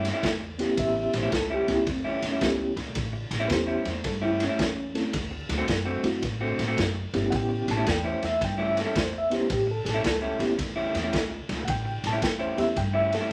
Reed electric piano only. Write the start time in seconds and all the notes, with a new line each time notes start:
0.58 B3 C#4 E4 G4
0.79 E5
1.17 C5
1.35 A4
1.54 G4
1.67 B3 C#4 E4 G4
1.73 E4
1.90 C4
2.08 C#4
2.41 B3 C#4 E4 G4
3.48 B3 C#4 E4 G4 B4
3.53 C5
4.06 A4
4.25 E4
4.43 C#4
4.94 A3 C4 E4 A4
6.04 A3 C4 E4 F#4
7.13 B3 C#4 E4 G4
7.30 F#5
7.71 A5
7.91 G5
8.07 C5
8.25 E5
8.62 E5
8.81 A4
9.00 C5
9.18 E5
9.30 B3 C#4 E4 G4
9.35 C5
9.53 G4
9.71 A4
9.85 G#4
9.90 A4
10.39 B3 C#4 E4 G4
11.65 F#5
11.70 G5
12.07 A5
12.24 G5
12.41 C5
12.56 B3 C#4 E4 G4 E5
12.78 G5
12.95 E5
13.15 A4